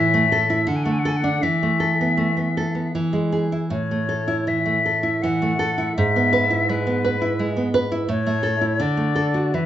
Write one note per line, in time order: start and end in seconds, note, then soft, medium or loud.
0.00 0.64 A2 medium
0.00 0.24 E3 medium
0.00 0.69 E5 loud
0.14 0.42 A3 medium
0.32 0.61 A4 medium
0.50 0.68 E4 medium
0.67 1.39 D3 medium
0.67 0.78 F#5 medium
0.76 0.85 G#5 medium
0.84 1.15 A3 medium
0.84 0.94 F#5 medium
0.92 1.00 G#5 medium
0.99 1.09 F#5 medium
1.05 1.35 A4 medium
1.05 1.18 G#5 medium
1.17 1.44 F#5 loud
1.24 1.42 D4 medium
1.42 2.89 E3 medium
1.42 2.93 E5 medium
1.63 1.91 A3 medium
1.80 2.09 A4 medium
2.01 2.29 B3 medium
2.17 2.47 A3 medium
2.37 2.66 B3 medium
2.57 2.86 A4 medium
2.75 2.93 B3 medium
2.95 3.70 E3 medium
3.13 3.44 G#3 medium
3.32 3.64 G#4 medium
3.52 3.71 E4 medium
3.70 5.91 A2 medium
3.70 4.49 C#5 medium
3.91 4.21 A3 medium
4.09 4.39 A4 medium
4.28 4.58 E4 medium
4.47 4.77 E3 medium
4.47 5.24 E5 medium
4.66 4.96 A3 medium
4.86 5.15 A4 medium
5.03 5.33 E4 medium
5.22 5.52 E3 medium
5.22 5.96 F#5 medium
5.42 5.71 A3 medium
5.59 5.88 A4 medium
5.78 5.96 E4 medium
5.97 8.05 G#2 medium
5.97 6.71 E5 loud
6.16 6.44 B3 medium
6.33 6.61 B4 medium
6.50 6.79 E4 medium
6.69 6.97 G#3 medium
6.69 7.74 B4 medium
6.87 7.14 B3 medium
7.05 7.32 B4 medium
7.21 7.49 E4 medium
7.39 7.67 G#3 medium
7.57 7.84 B3 medium
7.74 8.02 B4 medium
7.92 8.09 E4 medium
8.09 8.78 A2 medium
8.09 8.83 C#5 loud
8.26 8.55 A3 medium
8.43 8.72 A4 medium
8.61 8.79 E4 medium
8.80 9.52 D3 medium
8.80 9.56 D5 medium
8.97 9.27 A3 medium
9.15 9.46 A4 medium
9.34 9.54 F#4 medium
9.54 9.66 E3 medium
9.54 9.66 B4 medium